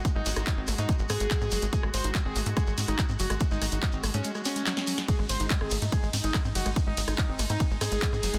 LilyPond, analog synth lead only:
\new Staff \with { instrumentName = "Analog synth lead" } { \time 4/4 \tempo 4 = 143 r16 dis'16 r8 dis'16 r8 dis'16 r8 gis'4~ gis'16 r16 | gis'16 r16 bis'16 r8 gis'16 r8 gis'16 r8 dis'16 r8 fis'16 r16 | r16 dis'16 r8 dis'16 r8 cis'16 r8 cis'4~ cis'16 r16 | gis'16 r16 bis'16 r8 gis'16 r8 gis'16 r8 dis'16 r8 fis'16 r16 |
r16 dis'16 r8 dis'16 r8 dis'16 r8 gis'4~ gis'16 r16 | }